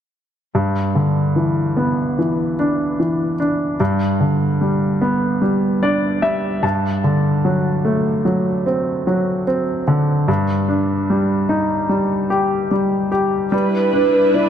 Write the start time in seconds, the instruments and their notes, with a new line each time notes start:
0.55 grand piano G2
0.95 grand piano D3
1.36 grand piano E3
1.77 grand piano B3
2.19 grand piano E3
2.59 grand piano D4
3.00 grand piano E3
3.40 grand piano D4
3.80 grand piano G2
4.20 grand piano D3
4.61 grand piano G3
5.02 grand piano B3
5.42 grand piano G3
5.83 grand piano D4 D5
6.22 grand piano G3 E5
6.63 grand piano G2 A5
7.04 grand piano D3
7.45 grand piano F#3
7.85 grand piano A3
8.25 grand piano F#3
8.66 grand piano C4
9.07 grand piano F#3
9.47 grand piano C4
9.88 grand piano D3
10.28 grand piano G2
10.68 grand piano D4
11.10 grand piano G3
11.49 grand piano D#4
11.89 grand piano G3
12.30 grand piano G4
12.71 grand piano G3
13.12 grand piano G4
13.52 grand piano G3, string section G3 D4 E4 B4, soft synth lead B4
13.93 grand piano D4
14.34 grand piano E4, soft synth lead D5